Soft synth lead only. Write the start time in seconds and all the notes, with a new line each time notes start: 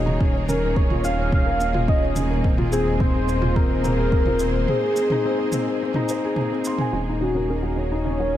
Already playing: D#5
0.48 A#4
0.76 C#5
1.05 F5
1.34 F5
1.89 D#5
2.72 G#4
3.00 C5
3.55 A#4
4.69 G#4
7.21 F#4
7.50 A#4
7.78 C#5
8.05 C#5